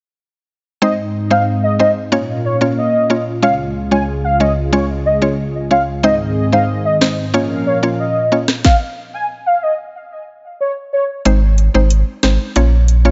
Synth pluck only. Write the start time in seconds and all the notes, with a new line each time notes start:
0.82 G#3 C4 D#4 C5
1.30 G#3 C4 D#4 C5
1.79 G#3 C4 D#4 C5
2.12 A#3 C#4 F4 C#5
2.61 A#3 C#4 F4 C#5
3.10 A#3 C#4 F4 C#5
3.42 G#3 C#4 F4 C#5
3.91 G#3 C#4 F4 C#5
4.40 G#3 C#4 F4 C#5
4.73 G#3 C#4 F4 C#5
5.22 G#3 C#4 F4 C#5
5.71 G#3 C#4 F4 C#5
6.03 G#3 C4 D#4 C5
6.52 G#3 C4 D#4 C5
7.01 G#3 C4 D#4 C5
7.34 A#3 C#4 F4 C#5
7.83 A#3 C#4 F4 C#5
8.32 A#3 C#4 F4 C#5
11.25 G#3 C4 D#4 C5
11.74 G#3 C4 D#4 C5
12.23 G#3 C4 D#4 C5
12.56 A#3 C#4 F4 C#5
13.05 A#3 C#4 F4 C#5